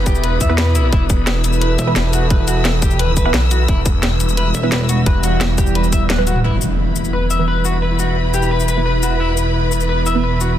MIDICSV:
0, 0, Header, 1, 9, 480
1, 0, Start_track
1, 0, Key_signature, 1, "minor"
1, 0, Tempo, 344828
1, 1289, Time_signature, 4, 2, 24, 8
1, 14736, End_track
2, 0, Start_track
2, 0, Title_t, "Clean electric guitar"
2, 0, Program_c, 0, 27
2, 88, Note_on_c, 0, 67, 96
2, 317, Note_off_c, 0, 67, 0
2, 328, Note_on_c, 0, 71, 80
2, 488, Note_off_c, 0, 71, 0
2, 568, Note_on_c, 0, 76, 77
2, 728, Note_off_c, 0, 76, 0
2, 809, Note_on_c, 0, 71, 103
2, 1037, Note_off_c, 0, 71, 0
2, 1048, Note_on_c, 0, 64, 72
2, 1208, Note_off_c, 0, 64, 0
2, 1288, Note_on_c, 0, 64, 81
2, 1448, Note_off_c, 0, 64, 0
2, 2248, Note_on_c, 0, 71, 84
2, 2408, Note_off_c, 0, 71, 0
2, 2488, Note_on_c, 0, 76, 80
2, 2716, Note_off_c, 0, 76, 0
2, 2728, Note_on_c, 0, 71, 76
2, 2956, Note_off_c, 0, 71, 0
2, 2968, Note_on_c, 0, 66, 72
2, 3128, Note_off_c, 0, 66, 0
2, 3208, Note_on_c, 0, 71, 82
2, 3436, Note_off_c, 0, 71, 0
2, 3448, Note_on_c, 0, 66, 74
2, 3677, Note_off_c, 0, 66, 0
2, 3928, Note_on_c, 0, 67, 97
2, 4157, Note_off_c, 0, 67, 0
2, 4169, Note_on_c, 0, 71, 81
2, 4328, Note_off_c, 0, 71, 0
2, 4409, Note_on_c, 0, 71, 78
2, 4568, Note_off_c, 0, 71, 0
2, 4650, Note_on_c, 0, 71, 75
2, 4745, Note_off_c, 0, 71, 0
2, 4889, Note_on_c, 0, 66, 75
2, 5048, Note_off_c, 0, 66, 0
2, 5129, Note_on_c, 0, 64, 81
2, 5288, Note_off_c, 0, 64, 0
2, 6089, Note_on_c, 0, 71, 81
2, 6249, Note_off_c, 0, 71, 0
2, 6329, Note_on_c, 0, 76, 78
2, 6557, Note_off_c, 0, 76, 0
2, 6569, Note_on_c, 0, 71, 77
2, 6797, Note_off_c, 0, 71, 0
2, 6809, Note_on_c, 0, 66, 75
2, 6968, Note_off_c, 0, 66, 0
2, 7049, Note_on_c, 0, 71, 82
2, 7277, Note_off_c, 0, 71, 0
2, 7289, Note_on_c, 0, 66, 77
2, 7517, Note_off_c, 0, 66, 0
2, 7768, Note_on_c, 0, 67, 99
2, 7997, Note_off_c, 0, 67, 0
2, 8009, Note_on_c, 0, 71, 81
2, 8168, Note_off_c, 0, 71, 0
2, 8249, Note_on_c, 0, 76, 78
2, 8408, Note_off_c, 0, 76, 0
2, 8489, Note_on_c, 0, 71, 78
2, 8648, Note_off_c, 0, 71, 0
2, 8729, Note_on_c, 0, 66, 100
2, 8888, Note_off_c, 0, 66, 0
2, 8969, Note_on_c, 0, 64, 77
2, 9128, Note_off_c, 0, 64, 0
2, 9929, Note_on_c, 0, 71, 77
2, 10088, Note_off_c, 0, 71, 0
2, 10168, Note_on_c, 0, 76, 76
2, 10397, Note_off_c, 0, 76, 0
2, 10409, Note_on_c, 0, 71, 72
2, 10637, Note_off_c, 0, 71, 0
2, 10649, Note_on_c, 0, 66, 70
2, 10808, Note_off_c, 0, 66, 0
2, 10889, Note_on_c, 0, 71, 77
2, 11117, Note_off_c, 0, 71, 0
2, 11129, Note_on_c, 0, 66, 73
2, 11357, Note_off_c, 0, 66, 0
2, 11608, Note_on_c, 0, 67, 98
2, 11836, Note_off_c, 0, 67, 0
2, 11848, Note_on_c, 0, 71, 76
2, 12008, Note_off_c, 0, 71, 0
2, 12088, Note_on_c, 0, 71, 76
2, 12248, Note_off_c, 0, 71, 0
2, 12328, Note_on_c, 0, 71, 73
2, 12424, Note_off_c, 0, 71, 0
2, 12569, Note_on_c, 0, 66, 70
2, 12728, Note_off_c, 0, 66, 0
2, 12809, Note_on_c, 0, 64, 81
2, 12968, Note_off_c, 0, 64, 0
2, 13769, Note_on_c, 0, 71, 77
2, 13928, Note_off_c, 0, 71, 0
2, 14009, Note_on_c, 0, 76, 76
2, 14237, Note_off_c, 0, 76, 0
2, 14250, Note_on_c, 0, 71, 73
2, 14477, Note_off_c, 0, 71, 0
2, 14489, Note_on_c, 0, 66, 71
2, 14649, Note_off_c, 0, 66, 0
2, 14736, End_track
3, 0, Start_track
3, 0, Title_t, "String section"
3, 0, Program_c, 1, 48
3, 0, Note_on_c, 1, 64, 72
3, 0, Note_on_c, 1, 71, 83
3, 0, Note_on_c, 1, 83, 79
3, 1849, Note_on_c, 1, 88, 79
3, 1872, Note_off_c, 1, 83, 0
3, 8951, Note_off_c, 1, 64, 0
3, 8968, Note_on_c, 1, 64, 69
3, 8969, Note_off_c, 1, 71, 0
3, 8993, Note_off_c, 1, 88, 0
3, 9436, Note_on_c, 1, 83, 68
3, 9688, Note_on_c, 1, 71, 71
3, 14736, Note_off_c, 1, 64, 0
3, 14736, Note_off_c, 1, 71, 0
3, 14736, Note_off_c, 1, 83, 0
3, 14736, End_track
4, 0, Start_track
4, 0, Title_t, "Synth drone"
4, 0, Program_c, 2, 95
4, 0, Note_on_c, 2, 47, 83
4, 0, Note_on_c, 2, 52, 76
4, 0, Note_on_c, 2, 64, 76
4, 0, Note_on_c, 2, 71, 92
4, 1275, Note_off_c, 2, 71, 0
4, 1287, Note_on_c, 2, 69, 93
4, 5114, Note_off_c, 2, 69, 0
4, 5129, Note_on_c, 2, 55, 95
4, 8914, Note_off_c, 2, 47, 0
4, 8914, Note_off_c, 2, 52, 0
4, 8914, Note_off_c, 2, 64, 0
4, 8954, Note_off_c, 2, 55, 0
4, 8968, Note_on_c, 2, 47, 83
4, 8968, Note_on_c, 2, 52, 74
4, 8968, Note_on_c, 2, 64, 76
4, 8968, Note_on_c, 2, 71, 91
4, 14736, Note_off_c, 2, 47, 0
4, 14736, Note_off_c, 2, 52, 0
4, 14736, Note_off_c, 2, 64, 0
4, 14736, Note_off_c, 2, 71, 0
4, 14736, End_track
5, 0, Start_track
5, 0, Title_t, "Synth stab"
5, 0, Program_c, 3, 62
5, 689, Note_on_c, 3, 52, 89
5, 689, Note_on_c, 3, 59, 79
5, 689, Note_on_c, 3, 71, 98
5, 785, Note_off_c, 3, 52, 0
5, 785, Note_off_c, 3, 59, 0
5, 785, Note_off_c, 3, 71, 0
5, 2608, Note_on_c, 3, 71, 101
5, 2609, Note_on_c, 3, 52, 88
5, 2609, Note_on_c, 3, 59, 79
5, 2705, Note_off_c, 3, 52, 0
5, 2705, Note_off_c, 3, 59, 0
5, 2705, Note_off_c, 3, 71, 0
5, 4529, Note_on_c, 3, 52, 90
5, 4529, Note_on_c, 3, 59, 81
5, 4529, Note_on_c, 3, 71, 101
5, 4625, Note_off_c, 3, 52, 0
5, 4625, Note_off_c, 3, 59, 0
5, 4625, Note_off_c, 3, 71, 0
5, 6448, Note_on_c, 3, 52, 91
5, 6449, Note_on_c, 3, 59, 81
5, 6449, Note_on_c, 3, 71, 99
5, 6545, Note_off_c, 3, 52, 0
5, 6545, Note_off_c, 3, 59, 0
5, 6545, Note_off_c, 3, 71, 0
5, 8608, Note_on_c, 3, 52, 93
5, 8608, Note_on_c, 3, 59, 85
5, 8609, Note_on_c, 3, 71, 106
5, 8705, Note_off_c, 3, 52, 0
5, 8705, Note_off_c, 3, 59, 0
5, 8705, Note_off_c, 3, 71, 0
5, 10289, Note_on_c, 3, 52, 86
5, 10289, Note_on_c, 3, 59, 79
5, 10289, Note_on_c, 3, 71, 97
5, 10385, Note_off_c, 3, 59, 0
5, 10386, Note_off_c, 3, 52, 0
5, 10386, Note_off_c, 3, 71, 0
5, 12209, Note_on_c, 3, 52, 85
5, 12209, Note_on_c, 3, 59, 80
5, 12209, Note_on_c, 3, 71, 97
5, 12305, Note_off_c, 3, 52, 0
5, 12305, Note_off_c, 3, 59, 0
5, 12305, Note_off_c, 3, 71, 0
5, 14129, Note_on_c, 3, 52, 84
5, 14129, Note_on_c, 3, 59, 81
5, 14129, Note_on_c, 3, 71, 96
5, 14225, Note_off_c, 3, 52, 0
5, 14225, Note_off_c, 3, 59, 0
5, 14225, Note_off_c, 3, 71, 0
5, 14736, End_track
6, 0, Start_track
6, 0, Title_t, "Detuned saw bass"
6, 0, Program_c, 4, 39
6, 89, Note_on_c, 4, 28, 96
6, 550, Note_off_c, 4, 28, 0
6, 568, Note_on_c, 4, 40, 93
6, 1269, Note_off_c, 4, 40, 0
6, 1289, Note_on_c, 4, 28, 98
6, 1990, Note_off_c, 4, 28, 0
6, 2009, Note_on_c, 4, 28, 94
6, 2470, Note_off_c, 4, 28, 0
6, 2729, Note_on_c, 4, 28, 98
6, 4065, Note_off_c, 4, 28, 0
6, 4065, Note_on_c, 4, 27, 98
6, 4441, Note_off_c, 4, 27, 0
6, 4441, Note_on_c, 4, 26, 98
6, 4630, Note_off_c, 4, 26, 0
6, 4649, Note_on_c, 4, 35, 95
6, 5110, Note_off_c, 4, 35, 0
6, 5129, Note_on_c, 4, 28, 97
6, 5830, Note_off_c, 4, 28, 0
6, 5849, Note_on_c, 4, 28, 96
6, 6310, Note_off_c, 4, 28, 0
6, 7049, Note_on_c, 4, 28, 98
6, 8385, Note_off_c, 4, 28, 0
6, 8385, Note_on_c, 4, 27, 98
6, 8761, Note_off_c, 4, 27, 0
6, 8761, Note_on_c, 4, 26, 98
6, 8950, Note_off_c, 4, 26, 0
6, 8968, Note_on_c, 4, 28, 87
6, 14736, Note_off_c, 4, 28, 0
6, 14736, End_track
7, 0, Start_track
7, 0, Title_t, "Wobble bass"
7, 0, Program_c, 5, 39
7, 2487, Note_on_c, 5, 28, 96
7, 2709, Note_off_c, 5, 28, 0
7, 6328, Note_on_c, 5, 28, 99
7, 6549, Note_off_c, 5, 28, 0
7, 6567, Note_on_c, 5, 28, 101
7, 7029, Note_off_c, 5, 28, 0
7, 14736, End_track
8, 0, Start_track
8, 0, Title_t, "Impact"
8, 0, Program_c, 6, 103
8, 8969, Note_on_c, 6, 60, 70
8, 10889, Note_off_c, 6, 60, 0
8, 14736, End_track
9, 0, Start_track
9, 0, Title_t, "Drums"
9, 88, Note_on_c, 9, 42, 62
9, 88, Note_on_c, 9, 82, 55
9, 89, Note_on_c, 9, 36, 107
9, 208, Note_off_c, 9, 82, 0
9, 208, Note_on_c, 9, 82, 27
9, 227, Note_off_c, 9, 42, 0
9, 228, Note_off_c, 9, 36, 0
9, 328, Note_on_c, 9, 42, 89
9, 347, Note_off_c, 9, 82, 0
9, 467, Note_off_c, 9, 42, 0
9, 568, Note_on_c, 9, 36, 63
9, 568, Note_on_c, 9, 42, 67
9, 568, Note_on_c, 9, 82, 58
9, 707, Note_off_c, 9, 42, 0
9, 707, Note_off_c, 9, 82, 0
9, 708, Note_off_c, 9, 36, 0
9, 808, Note_on_c, 9, 38, 120
9, 808, Note_on_c, 9, 42, 93
9, 947, Note_off_c, 9, 38, 0
9, 947, Note_off_c, 9, 42, 0
9, 1048, Note_on_c, 9, 42, 65
9, 1048, Note_on_c, 9, 82, 57
9, 1187, Note_off_c, 9, 42, 0
9, 1187, Note_off_c, 9, 82, 0
9, 1288, Note_on_c, 9, 42, 87
9, 1289, Note_on_c, 9, 36, 119
9, 1427, Note_off_c, 9, 42, 0
9, 1428, Note_off_c, 9, 36, 0
9, 1528, Note_on_c, 9, 36, 102
9, 1528, Note_on_c, 9, 42, 64
9, 1528, Note_on_c, 9, 82, 57
9, 1667, Note_off_c, 9, 42, 0
9, 1667, Note_off_c, 9, 82, 0
9, 1668, Note_off_c, 9, 36, 0
9, 1768, Note_on_c, 9, 38, 119
9, 1768, Note_on_c, 9, 42, 86
9, 1907, Note_off_c, 9, 38, 0
9, 1907, Note_off_c, 9, 42, 0
9, 2008, Note_on_c, 9, 42, 63
9, 2008, Note_on_c, 9, 82, 58
9, 2128, Note_off_c, 9, 82, 0
9, 2128, Note_on_c, 9, 82, 27
9, 2147, Note_off_c, 9, 42, 0
9, 2248, Note_on_c, 9, 42, 85
9, 2267, Note_off_c, 9, 82, 0
9, 2387, Note_off_c, 9, 42, 0
9, 2488, Note_on_c, 9, 42, 64
9, 2488, Note_on_c, 9, 82, 58
9, 2627, Note_off_c, 9, 42, 0
9, 2627, Note_off_c, 9, 82, 0
9, 2728, Note_on_c, 9, 38, 117
9, 2728, Note_on_c, 9, 42, 88
9, 2867, Note_off_c, 9, 38, 0
9, 2867, Note_off_c, 9, 42, 0
9, 2968, Note_on_c, 9, 42, 65
9, 2968, Note_on_c, 9, 82, 58
9, 3107, Note_off_c, 9, 42, 0
9, 3107, Note_off_c, 9, 82, 0
9, 3208, Note_on_c, 9, 42, 91
9, 3209, Note_on_c, 9, 36, 113
9, 3347, Note_off_c, 9, 42, 0
9, 3348, Note_off_c, 9, 36, 0
9, 3448, Note_on_c, 9, 42, 65
9, 3448, Note_on_c, 9, 82, 60
9, 3587, Note_off_c, 9, 42, 0
9, 3587, Note_off_c, 9, 82, 0
9, 3688, Note_on_c, 9, 38, 115
9, 3688, Note_on_c, 9, 42, 87
9, 3827, Note_off_c, 9, 38, 0
9, 3827, Note_off_c, 9, 42, 0
9, 3928, Note_on_c, 9, 42, 63
9, 3928, Note_on_c, 9, 82, 59
9, 3929, Note_on_c, 9, 36, 99
9, 4048, Note_off_c, 9, 82, 0
9, 4048, Note_on_c, 9, 82, 27
9, 4067, Note_off_c, 9, 42, 0
9, 4068, Note_off_c, 9, 36, 0
9, 4168, Note_on_c, 9, 42, 83
9, 4187, Note_off_c, 9, 82, 0
9, 4307, Note_off_c, 9, 42, 0
9, 4408, Note_on_c, 9, 42, 63
9, 4408, Note_on_c, 9, 82, 59
9, 4409, Note_on_c, 9, 36, 60
9, 4547, Note_off_c, 9, 42, 0
9, 4547, Note_off_c, 9, 82, 0
9, 4548, Note_off_c, 9, 36, 0
9, 4648, Note_on_c, 9, 38, 116
9, 4648, Note_on_c, 9, 42, 90
9, 4787, Note_off_c, 9, 38, 0
9, 4787, Note_off_c, 9, 42, 0
9, 4888, Note_on_c, 9, 42, 65
9, 4888, Note_on_c, 9, 82, 60
9, 5028, Note_off_c, 9, 42, 0
9, 5028, Note_off_c, 9, 82, 0
9, 5128, Note_on_c, 9, 42, 89
9, 5129, Note_on_c, 9, 36, 110
9, 5268, Note_off_c, 9, 36, 0
9, 5268, Note_off_c, 9, 42, 0
9, 5368, Note_on_c, 9, 42, 68
9, 5368, Note_on_c, 9, 82, 62
9, 5369, Note_on_c, 9, 36, 100
9, 5508, Note_off_c, 9, 36, 0
9, 5508, Note_off_c, 9, 42, 0
9, 5508, Note_off_c, 9, 82, 0
9, 5609, Note_on_c, 9, 38, 114
9, 5609, Note_on_c, 9, 42, 92
9, 5748, Note_off_c, 9, 38, 0
9, 5748, Note_off_c, 9, 42, 0
9, 5848, Note_on_c, 9, 42, 64
9, 5848, Note_on_c, 9, 82, 60
9, 5969, Note_off_c, 9, 82, 0
9, 5969, Note_on_c, 9, 82, 29
9, 5988, Note_off_c, 9, 42, 0
9, 6088, Note_on_c, 9, 42, 90
9, 6108, Note_off_c, 9, 82, 0
9, 6227, Note_off_c, 9, 42, 0
9, 6328, Note_on_c, 9, 42, 65
9, 6328, Note_on_c, 9, 82, 60
9, 6468, Note_off_c, 9, 42, 0
9, 6468, Note_off_c, 9, 82, 0
9, 6568, Note_on_c, 9, 38, 113
9, 6568, Note_on_c, 9, 42, 89
9, 6707, Note_off_c, 9, 38, 0
9, 6707, Note_off_c, 9, 42, 0
9, 6808, Note_on_c, 9, 42, 65
9, 6808, Note_on_c, 9, 82, 63
9, 6948, Note_off_c, 9, 42, 0
9, 6948, Note_off_c, 9, 82, 0
9, 7048, Note_on_c, 9, 42, 92
9, 7049, Note_on_c, 9, 36, 120
9, 7188, Note_off_c, 9, 36, 0
9, 7188, Note_off_c, 9, 42, 0
9, 7288, Note_on_c, 9, 42, 68
9, 7288, Note_on_c, 9, 82, 62
9, 7428, Note_off_c, 9, 42, 0
9, 7428, Note_off_c, 9, 82, 0
9, 7528, Note_on_c, 9, 38, 113
9, 7528, Note_on_c, 9, 42, 91
9, 7667, Note_off_c, 9, 38, 0
9, 7667, Note_off_c, 9, 42, 0
9, 7768, Note_on_c, 9, 42, 67
9, 7768, Note_on_c, 9, 82, 62
9, 7769, Note_on_c, 9, 36, 101
9, 7888, Note_off_c, 9, 82, 0
9, 7888, Note_on_c, 9, 82, 28
9, 7908, Note_off_c, 9, 36, 0
9, 7908, Note_off_c, 9, 42, 0
9, 8008, Note_on_c, 9, 42, 91
9, 8028, Note_off_c, 9, 82, 0
9, 8128, Note_on_c, 9, 82, 28
9, 8147, Note_off_c, 9, 42, 0
9, 8248, Note_off_c, 9, 82, 0
9, 8248, Note_on_c, 9, 42, 69
9, 8248, Note_on_c, 9, 82, 62
9, 8249, Note_on_c, 9, 36, 60
9, 8387, Note_off_c, 9, 42, 0
9, 8387, Note_off_c, 9, 82, 0
9, 8388, Note_off_c, 9, 36, 0
9, 8488, Note_on_c, 9, 38, 115
9, 8488, Note_on_c, 9, 42, 97
9, 8488, Note_on_c, 9, 48, 61
9, 8609, Note_off_c, 9, 48, 0
9, 8609, Note_on_c, 9, 48, 61
9, 8628, Note_off_c, 9, 38, 0
9, 8628, Note_off_c, 9, 42, 0
9, 8729, Note_on_c, 9, 42, 68
9, 8729, Note_on_c, 9, 82, 62
9, 8748, Note_off_c, 9, 48, 0
9, 8849, Note_on_c, 9, 45, 85
9, 8868, Note_off_c, 9, 42, 0
9, 8868, Note_off_c, 9, 82, 0
9, 8988, Note_off_c, 9, 45, 0
9, 9208, Note_on_c, 9, 82, 61
9, 9348, Note_off_c, 9, 82, 0
9, 9688, Note_on_c, 9, 82, 60
9, 9808, Note_off_c, 9, 82, 0
9, 9808, Note_on_c, 9, 82, 28
9, 9947, Note_off_c, 9, 82, 0
9, 10169, Note_on_c, 9, 82, 61
9, 10308, Note_off_c, 9, 82, 0
9, 10649, Note_on_c, 9, 82, 59
9, 10788, Note_off_c, 9, 82, 0
9, 11129, Note_on_c, 9, 82, 60
9, 11268, Note_off_c, 9, 82, 0
9, 11609, Note_on_c, 9, 82, 56
9, 11730, Note_off_c, 9, 82, 0
9, 11730, Note_on_c, 9, 82, 27
9, 11869, Note_off_c, 9, 82, 0
9, 11969, Note_on_c, 9, 82, 26
9, 12089, Note_off_c, 9, 82, 0
9, 12089, Note_on_c, 9, 82, 60
9, 12228, Note_off_c, 9, 82, 0
9, 12569, Note_on_c, 9, 82, 60
9, 12708, Note_off_c, 9, 82, 0
9, 13049, Note_on_c, 9, 82, 57
9, 13188, Note_off_c, 9, 82, 0
9, 13529, Note_on_c, 9, 82, 57
9, 13649, Note_off_c, 9, 82, 0
9, 13649, Note_on_c, 9, 82, 27
9, 13788, Note_off_c, 9, 82, 0
9, 14008, Note_on_c, 9, 82, 55
9, 14148, Note_off_c, 9, 82, 0
9, 14489, Note_on_c, 9, 82, 55
9, 14628, Note_off_c, 9, 82, 0
9, 14736, End_track
0, 0, End_of_file